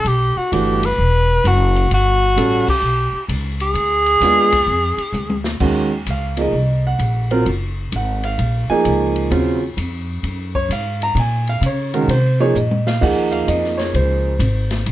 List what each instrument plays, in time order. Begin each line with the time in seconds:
0.04 upright bass B1, tenor saxophone G4, ride
0.36 tenor saxophone F#4, muted upright bass stroke
0.52 upright bass G1, grand piano E3 A3 D4 F#4, tenor saxophone G4, hi-hat pedal, ride
0.83 tenor saxophone B4, ride
0.98 upright bass E1
1.44 upright bass F#1, tenor saxophone F#4, hi-hat pedal, ride
1.76 ride
1.91 upright bass G1, tenor saxophone F#4, ride
2.36 upright bass A1, grand piano G3 C#4 F#4 A4, hi-hat pedal, ride
2.68 tenor saxophone G4, muted upright bass stroke, kick, crash
2.82 upright bass B1
3.12 muted upright bass stroke
3.28 upright bass C#2, hi-hat pedal, ride
3.60 tenor saxophone G#4, ride
3.74 upright bass D2, ride
4.06 ride
4.21 upright bass D#2, grand piano G#3 B3 D4 F4, snare, hi-hat pedal, ride
4.52 kick, ride
4.66 upright bass F2
4.97 muted upright bass stroke, ride
5.12 upright bass D2, hi-hat pedal, high tom
5.30 high tom
5.44 snare
5.60 upright bass D#2, grand piano D#3 G#3 C#4 F#4, kick, crash
6.06 upright bass C#2, hi-hat pedal, ride
6.10 grand piano F5
6.37 grand piano F3 A#3 D#4 G#4, ride
6.41 grand piano D#5
6.53 upright bass C2
6.87 grand piano F#5
6.99 upright bass A#1, hi-hat pedal, ride
7.31 grand piano F#3 C4 F4 A#4, ride
7.46 upright bass F#1, ride
7.92 upright bass G#1, grand piano F#5, hi-hat pedal, ride
8.23 grand piano F5, ride
8.38 upright bass A#1, ride
8.69 grand piano F3 A#3 D#4 G#4 G#5, muted upright bass stroke
8.85 upright bass C#2, hi-hat pedal, ride
9.16 ride
9.31 upright bass D#2, grand piano C#3 F#3 C4 F4, ride
9.77 upright bass F2, hi-hat pedal, ride
10.23 upright bass F#2, ride
10.55 grand piano C#5, kick
10.69 upright bass G#2, grand piano F5, hi-hat pedal, ride
11.02 grand piano A#5, ride
11.15 upright bass A#2, ride
11.20 grand piano G#5
11.47 grand piano F5, ride
11.61 upright bass C#3, hi-hat pedal, ride
11.66 grand piano C#5
11.94 grand piano D#3 G#3 C#4 F#4 A#4, ride
12.08 upright bass C3, grand piano C5, ride
12.40 grand piano F3 A#3 D#4 G#4 C#5
12.55 upright bass A#2, grand piano D#5, floor tom, hi-hat pedal
12.71 high tom
12.87 grand piano F5, snare
13.01 upright bass D#2, grand piano F3 A#3 D#4 G#4 F#5, kick, crash
13.32 grand piano F5, ride
13.48 upright bass F2, grand piano D#5, hi-hat pedal, ride
13.64 snare
13.78 grand piano C#5, snare, ride
13.94 upright bass C#2, grand piano C5, ride
14.39 upright bass G#1, hi-hat pedal, ride
14.71 snare, ride
14.86 upright bass A#1, ride